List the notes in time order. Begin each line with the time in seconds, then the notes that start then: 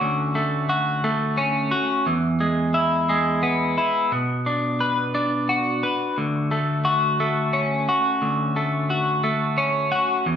Already playing: A3 C#4 F#4
0.01 D2
0.35 A3
0.69 F#4
1.04 A3
1.38 C#4
1.71 F#4
2.07 E2
2.40 G#3
2.74 E4
3.09 G#3
3.43 B3
3.78 E4
4.12 B2
4.46 D4
4.81 B4
5.15 D4
5.49 F#4
5.83 B4
6.18 D2
6.51 A3
6.85 F#4
7.20 A3
7.53 C#4
7.89 F#4
8.22 D2
8.56 A3
8.90 F#4
9.24 A3
9.58 C#4
9.92 F#4
10.26 E2